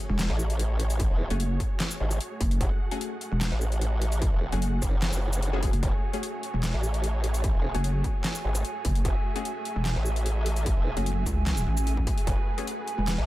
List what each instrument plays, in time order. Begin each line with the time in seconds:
Already playing: supersaw synth A3 F#4 G#4 C#5, ambient pad G#5, impact
0.10 wobble bass E1
0.19 snare, clap, closed hi-hat, shaker
0.30 wobble bass A1
0.39 shaker
0.50 closed hi-hat
0.59 closed hi-hat
0.80 open hi-hat
0.90 closed hi-hat, shaker
1.00 kick, closed hi-hat
1.10 wobble bass E1
1.30 wobble bass F#1, synth stab A3 C#4 F#4 G#4, closed hi-hat
1.40 closed hi-hat
1.60 kick, closed hi-hat
1.80 snare, clap, closed hi-hat
1.91 shaker
2.00 wobble bass G#1
2.11 closed hi-hat, shaker
2.21 closed hi-hat
2.41 wobble bass F#1, kick, open hi-hat
2.51 closed hi-hat
2.61 wobble bass F#1, supersaw synth F#5, kick, closed hi-hat
2.91 synth stab A3 C#4 F#4 G#4, closed hi-hat
3.01 closed hi-hat
3.21 closed hi-hat
3.32 wobble bass E1
3.41 snare, clap, closed hi-hat, shaker
3.52 wobble bass A1
3.61 shaker
3.72 closed hi-hat
3.81 closed hi-hat
4.02 open hi-hat
4.12 closed hi-hat, shaker
4.22 kick, closed hi-hat
4.32 wobble bass E1
4.52 wobble bass F#1, synth stab A3 C#4 F#4 G#4, closed hi-hat
4.62 closed hi-hat
4.82 wobble bass F#1, kick, closed hi-hat, shaker
5.02 snare, clap, closed hi-hat
5.13 wobble bass F#1, shaker
5.33 closed hi-hat, shaker
5.42 closed hi-hat
5.53 synth stab A3 C#4 F#4 G#4
5.63 kick, open hi-hat
5.73 wobble bass F#1, closed hi-hat
5.83 wobble bass F#1, supersaw synth C#5, kick, closed hi-hat
6.13 synth stab A3 C#4 F#4 G#4, closed hi-hat
6.23 closed hi-hat
6.43 closed hi-hat
6.54 wobble bass E1
6.63 snare, clap, closed hi-hat, shaker
6.74 wobble bass A1
6.83 shaker
6.94 closed hi-hat
7.04 closed hi-hat
7.24 open hi-hat
7.34 closed hi-hat, shaker
7.44 kick, closed hi-hat
7.54 wobble bass E1
7.75 wobble bass F#1, synth stab A3 C#4 F#4 G#4, closed hi-hat
7.84 closed hi-hat
8.04 kick, closed hi-hat
8.24 snare, clap, closed hi-hat
8.35 shaker
8.45 wobble bass G#1
8.55 closed hi-hat, shaker
8.65 closed hi-hat
8.85 wobble bass F#1, kick, open hi-hat
8.95 closed hi-hat
9.05 wobble bass F#1, supersaw synth E5, kick, closed hi-hat
9.36 synth stab A3 C#4 F#4 G#4, closed hi-hat
9.45 closed hi-hat
9.65 closed hi-hat
9.76 wobble bass E1
9.85 snare, clap, closed hi-hat, shaker
9.96 wobble bass A1
10.06 shaker
10.16 closed hi-hat
10.26 closed hi-hat
10.46 open hi-hat
10.56 closed hi-hat, shaker
10.66 kick, closed hi-hat
10.77 wobble bass E1
10.97 wobble bass F#1, synth stab A3 C#4 F#4 G#4, closed hi-hat
11.06 closed hi-hat
11.26 wobble bass C#2, kick, closed hi-hat, shaker
11.47 snare, clap, closed hi-hat
11.57 shaker
11.67 wobble bass A1
11.77 closed hi-hat, shaker
11.87 closed hi-hat
11.97 kick
12.07 kick, open hi-hat
12.18 closed hi-hat
12.27 wobble bass F#1, supersaw synth B4, kick, closed hi-hat
12.58 synth stab A3 C#4 F#4 G#4, closed hi-hat
12.67 closed hi-hat
12.88 closed hi-hat
12.98 wobble bass E1
13.08 snare, clap, closed hi-hat, shaker
13.18 wobble bass A1